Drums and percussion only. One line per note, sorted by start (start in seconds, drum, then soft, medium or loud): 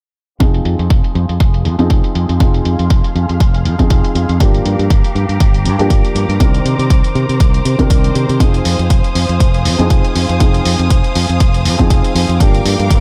0.40 kick loud
0.40 closed hi-hat medium
0.54 closed hi-hat soft
0.65 closed hi-hat medium
0.79 closed hi-hat soft
0.90 kick loud
0.90 closed hi-hat medium
1.04 closed hi-hat soft
1.15 closed hi-hat soft
1.29 closed hi-hat soft
1.40 kick loud
1.40 closed hi-hat medium
1.54 closed hi-hat soft
1.65 closed hi-hat medium
1.79 closed hi-hat soft
1.90 kick loud
1.90 closed hi-hat medium
2.04 closed hi-hat soft
2.15 closed hi-hat medium
2.29 closed hi-hat soft
2.40 kick loud
2.40 closed hi-hat medium
2.54 closed hi-hat soft
2.65 closed hi-hat medium
2.79 closed hi-hat soft
2.90 kick loud
2.90 closed hi-hat medium
3.04 closed hi-hat soft
3.16 closed hi-hat soft
3.29 closed hi-hat soft
3.40 kick loud
3.40 closed hi-hat medium
3.54 closed hi-hat soft
3.65 closed hi-hat medium
3.79 kick medium
3.79 closed hi-hat soft
3.90 kick loud
3.90 closed hi-hat medium
4.04 closed hi-hat soft
4.15 closed hi-hat medium
4.29 closed hi-hat soft
4.40 kick loud
4.40 closed hi-hat medium
4.54 closed hi-hat soft
4.65 closed hi-hat medium
4.79 closed hi-hat soft
4.90 kick loud
4.90 closed hi-hat medium
5.04 closed hi-hat soft
5.16 closed hi-hat soft
5.29 closed hi-hat soft
5.40 kick loud
5.40 closed hi-hat medium
5.54 closed hi-hat soft
5.65 closed hi-hat medium
5.79 closed hi-hat soft
5.90 kick loud
5.90 closed hi-hat medium
6.05 closed hi-hat soft
6.16 closed hi-hat medium
6.30 closed hi-hat soft
6.40 kick loud
6.40 closed hi-hat medium
6.54 closed hi-hat soft
6.66 closed hi-hat medium
6.79 closed hi-hat soft
6.90 kick loud
6.90 closed hi-hat medium
7.04 closed hi-hat soft
7.15 closed hi-hat soft
7.29 closed hi-hat soft
7.40 kick loud
7.40 closed hi-hat medium
7.54 closed hi-hat soft
7.65 closed hi-hat medium
7.79 kick medium
7.79 closed hi-hat soft
7.90 kick loud
7.90 closed hi-hat medium
8.04 closed hi-hat soft
8.15 closed hi-hat medium
8.29 closed hi-hat soft
8.40 kick loud
8.40 closed hi-hat medium
8.54 closed hi-hat soft
8.65 open hi-hat medium
8.79 closed hi-hat soft
8.90 kick loud
8.90 closed hi-hat medium
9.04 closed hi-hat soft
9.15 open hi-hat medium
9.29 closed hi-hat soft
9.40 kick loud
9.40 closed hi-hat medium
9.54 closed hi-hat soft
9.65 open hi-hat loud
9.79 closed hi-hat soft
9.90 kick loud
9.90 closed hi-hat medium
10.04 closed hi-hat soft
10.15 open hi-hat medium
10.29 closed hi-hat soft
10.40 kick loud
10.40 closed hi-hat medium
10.54 closed hi-hat soft
10.65 open hi-hat medium
10.79 closed hi-hat soft
10.90 kick loud
10.90 closed hi-hat medium
11.04 closed hi-hat soft
11.15 open hi-hat medium
11.29 closed hi-hat soft
11.40 kick loud
11.40 closed hi-hat medium
11.54 closed hi-hat soft
11.65 open hi-hat medium
11.79 kick medium
11.79 closed hi-hat soft
11.90 kick loud
11.90 closed hi-hat medium
12.04 closed hi-hat soft
12.16 open hi-hat medium
12.29 closed hi-hat soft
12.40 kick loud
12.40 closed hi-hat medium
12.54 closed hi-hat soft
12.66 open hi-hat medium
12.80 closed hi-hat soft
12.90 kick loud
12.90 closed hi-hat medium